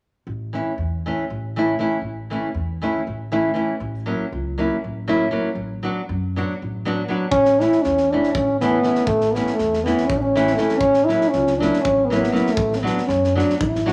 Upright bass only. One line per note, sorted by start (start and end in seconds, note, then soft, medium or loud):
0.27 0.58 A1 medium
0.78 1.09 E2 medium
1.30 1.74 A1 medium
2.02 2.33 A1 medium
2.54 2.86 E2 medium
3.07 3.50 A1 medium
3.80 4.11 A1 medium
4.32 4.63 C#2 medium
4.84 5.27 A1 medium
5.55 5.87 A1 medium
6.09 6.40 F#2 medium
6.62 7.04 A1 medium
7.35 7.65 A1 medium
7.85 8.16 E2 medium
8.36 8.79 A1 medium
9.08 9.38 A1 medium
9.59 9.90 E2 medium
10.12 10.55 A1 medium
10.83 11.14 A1 medium
11.34 11.65 C#2 medium
11.84 12.28 A1 medium
12.57 12.88 A1 medium
13.08 13.40 F#2 medium
13.61 13.93 A1 medium